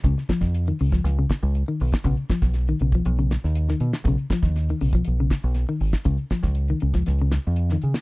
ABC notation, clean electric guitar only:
X:1
M:4/4
L:1/16
Q:1/4=119
K:Dbmix
V:1 name="Clean electric guitar" clef=bass
D,2 F,2 z E, D, F,2 D,2 z2 E,2 z | D,2 F,2 z E, D, F,2 D,2 z2 E,2 z | D,2 F,2 z E, D, F,2 D,2 z2 E,2 z | D,2 F,2 z E, D, F,2 D,2 z2 E,2 z |]